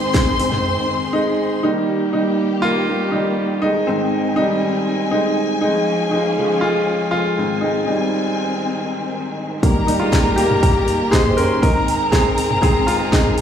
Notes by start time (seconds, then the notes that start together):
Already playing: G#2 D#3 C4 G#4 C5 D#5 C6
0.14 kick, snare, open hi-hat
0.39 G#2 D#3 C4, open hi-hat
0.52 snare, floor tom
1.13 G#3 D#4
1.63 D#3 G3 A#3 D#4 G4
2.13 G3 D#4
2.62 A#3 F4
2.89 D#3 G3 A#3
3.12 G3 D#4
3.62 G#3 C4 D#4 G#5
3.87 G#2 D#3 C4
4.36 G3 D#4
5.11 G#3 D#4
5.61 F3 G#3 C#4 D#4
6.11 G#3 D#4
6.38 C#3 F3 G#3
6.61 G#3 F4
7.11 G#3 F4
7.38 G#2 D#3 C4 G#5
7.61 G#3 D#4
7.86 G3 D#4
9.62 D#3 G3 A#3 G4 A#4 A#5, kick, open hi-hat
9.87 G3 D#4, open hi-hat
10.00 G#3 F4
10.13 kick, snare, open hi-hat
10.36 A#3 G4, open hi-hat
10.50 floor tom
10.63 kick, open hi-hat
10.88 open hi-hat
11.11 D#4 G#4 C5 C6, kick, snare, open hi-hat
11.26 floor tom
11.37 C#4 A#4, open hi-hat
11.62 G#2 D#3 C4 D#4 G#4 A#4 A#5, kick, open hi-hat
11.88 open hi-hat
12.12 C4 G#4, kick, snare, open hi-hat
12.38 open hi-hat
12.51 floor tom
12.62 G#2 D#3 C4 G#4, kick, open hi-hat
12.87 G#3 F4, open hi-hat
13.12 G#3 D#4, kick, snare, open hi-hat
13.26 floor tom
13.38 open hi-hat